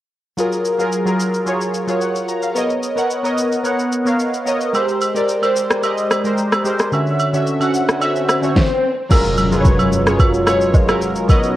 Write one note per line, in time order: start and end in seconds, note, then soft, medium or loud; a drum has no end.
0.37 0.70 F#3 medium
0.37 0.71 F4 medium
0.37 0.71 G#4 medium
0.37 0.72 A#4 medium
0.37 shaker medium
0.52 shaker soft
0.65 shaker medium
0.78 1.00 F#3 medium
0.78 1.01 F4 medium
0.78 1.01 G#4 medium
0.78 1.02 A#4 medium
0.78 shaker medium
0.92 shaker medium
1.05 1.38 F#3 medium
1.05 1.39 F4 medium
1.05 1.39 G#4 medium
1.05 1.40 A#4 medium
1.05 shaker medium
1.20 shaker medium
1.34 shaker medium
1.46 1.79 F#3 medium
1.46 1.80 F4 medium
1.46 1.80 G#4 medium
1.46 1.81 C#5 medium
1.46 shaker medium
1.61 shaker medium
1.74 shaker medium
1.87 2.20 F#3 medium
1.87 2.21 F4 medium
1.87 2.21 G#4 medium
1.87 2.22 C#5 medium
1.87 shaker medium
2.01 2.27 F#5 medium
2.01 shaker medium
2.16 shaker medium
2.29 2.42 A#5 medium
2.29 shaker medium
2.43 2.69 F5 medium
2.43 shaker medium
2.55 2.88 B3 medium
2.55 2.89 A#4 medium
2.55 2.89 C#5 medium
2.55 2.90 D#5 medium
2.55 shaker medium
2.70 shaker soft
2.83 shaker medium
2.96 3.18 B3 medium
2.96 3.19 A#4 medium
2.96 3.19 C#5 medium
2.96 3.20 F#5 medium
2.96 shaker medium
3.11 shaker medium
3.23 3.57 B3 medium
3.23 3.57 A#4 medium
3.23 3.57 C#5 medium
3.23 3.58 D#5 medium
3.23 shaker soft
3.38 shaker medium
3.52 shaker medium
3.64 3.97 B3 medium
3.64 3.98 A#4 medium
3.64 3.98 C#5 medium
3.64 3.99 F#5 medium
3.64 shaker medium
3.79 shaker medium
3.93 shaker medium
4.05 4.38 B3 medium
4.05 4.39 A#4 medium
4.05 4.39 C#5 medium
4.05 4.40 F5 medium
4.05 shaker medium
4.20 shaker medium
4.34 shaker medium
4.45 4.68 B3 medium
4.45 4.69 A#4 medium
4.45 4.69 C#5 medium
4.45 4.70 D#5 medium
4.45 shaker medium
4.61 shaker medium
4.73 5.07 G#3 medium
4.73 5.07 G4 medium
4.73 5.07 A#4 medium
4.73 5.08 C5 medium
4.73 high agogo medium
4.73 shaker medium
4.89 shaker soft
5.01 high agogo medium
5.01 shaker medium
5.14 5.37 G#3 medium
5.14 5.37 G4 medium
5.14 5.38 A#4 medium
5.14 5.38 D5 medium
5.14 shaker medium
5.29 shaker medium
5.42 5.75 G#3 medium
5.42 5.75 G4 medium
5.42 5.76 A#4 medium
5.42 5.76 C5 medium
5.42 high agogo medium
5.42 shaker medium
5.56 shaker loud
5.71 cross-stick loud
5.71 shaker medium
5.82 6.16 G#3 medium
5.82 6.16 G4 medium
5.82 6.17 A#4 medium
5.82 6.17 D#5 medium
5.82 high agogo medium
5.82 shaker medium
5.97 shaker medium
6.11 cross-stick medium
6.11 high agogo medium
6.11 shaker medium
6.24 6.57 G#3 medium
6.24 6.57 G4 medium
6.24 6.58 A#4 medium
6.24 6.58 C5 medium
6.24 shaker medium
6.38 shaker medium
6.52 cross-stick medium
6.52 high agogo medium
6.52 shaker medium
6.64 6.87 G#3 medium
6.64 6.87 G4 medium
6.64 6.88 A#4 medium
6.64 6.88 C5 medium
6.64 shaker medium
6.79 cross-stick medium
6.79 shaker medium
6.92 7.25 D3 medium
6.92 7.25 C#4 medium
6.92 7.26 F#4 medium
6.92 7.26 E5 medium
6.92 swell medium
6.92 high agogo medium
6.92 shaker medium
7.07 shaker soft
7.19 high agogo medium
7.19 shaker medium
7.33 7.55 D3 medium
7.33 7.55 C#4 medium
7.33 7.56 F#4 medium
7.33 7.56 E5 medium
7.33 shaker medium
7.47 shaker medium
7.60 7.93 D3 medium
7.60 7.94 C#4 medium
7.60 7.94 F#4 medium
7.60 7.95 F#5 medium
7.60 high agogo medium
7.60 shaker medium
7.74 shaker medium
7.89 cross-stick medium
7.89 shaker medium
8.00 8.34 D3 medium
8.00 8.34 C#4 medium
8.00 8.35 F#4 medium
8.00 8.35 E5 medium
8.00 high agogo medium
8.00 shaker medium
8.16 shaker medium
8.29 cross-stick medium
8.29 high agogo medium
8.29 shaker medium
8.42 8.55 D3 medium
8.42 8.56 C#4 medium
8.42 8.56 F#4 medium
8.42 8.57 C#5 medium
8.42 shaker medium
8.56 kick loud
8.56 snare medium
9.09 11.27 F#2 medium
9.09 9.43 F#3 medium
9.09 11.56 F#3 medium
9.09 11.27 G#3 medium
9.09 9.44 F4 medium
9.09 11.27 F4 medium
9.09 9.44 G#4 medium
9.09 11.56 A#4 medium
9.09 9.44 A#4 medium
9.09 kick loud
9.09 crash medium
9.09 impact medium
9.09 high agogo medium
9.09 shaker medium
9.25 shaker soft
9.37 high agogo medium
9.37 shaker medium
9.51 9.95 F#3 medium
9.51 9.95 F4 medium
9.51 9.96 G#4 medium
9.51 9.59 B4 medium
9.51 shaker medium
9.60 9.99 C#5 medium
9.65 kick medium
9.65 shaker medium
9.79 high agogo medium
9.79 shaker medium
9.92 shaker medium
10.06 10.39 F#3 medium
10.06 10.39 F4 medium
10.06 10.40 G#4 medium
10.06 10.40 C#5 medium
10.06 cross-stick loud
10.06 shaker medium
10.19 kick loud
10.19 high agogo medium
10.19 shaker medium
10.34 shaker medium
10.46 10.79 F#3 medium
10.46 10.80 F4 medium
10.46 10.80 G#4 medium
10.46 10.81 C#5 loud
10.46 cross-stick medium
10.46 high agogo medium
10.46 shaker medium
10.61 shaker medium
10.74 kick medium
10.74 low woodblock medium
10.74 shaker medium
10.87 11.20 F#3 medium
10.87 11.21 F4 medium
10.87 11.21 G#4 medium
10.87 11.22 A#4 loud
10.87 cross-stick medium
10.87 high agogo medium
10.87 shaker medium
11.01 shaker medium
11.15 shaker medium
11.28 11.56 B2 medium
11.28 11.56 B3 medium
11.28 11.56 C#4 medium
11.28 11.56 D#4 medium
11.28 11.56 A#4 medium
11.28 11.56 C#5 medium
11.28 11.56 D#5 medium
11.28 kick loud
11.28 high agogo medium
11.28 shaker medium
11.43 shaker soft